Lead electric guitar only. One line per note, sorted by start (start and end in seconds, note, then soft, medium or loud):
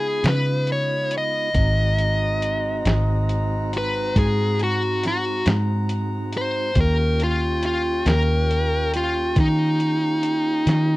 0.00 0.26 G#4 medium
0.29 0.69 B4 medium
0.72 1.12 C#5 medium
1.18 3.71 D#5 medium
3.78 4.17 B4 medium
4.19 4.59 G#4 medium
4.63 5.03 F#4 medium
5.07 5.47 F#4 medium
6.37 6.77 C5 loud
6.80 7.20 A#4 medium
7.23 7.63 F4 medium
7.66 8.06 F4 medium
8.07 8.91 A#4 loud
8.97 9.37 F4 medium
9.40 10.97 D#4 loud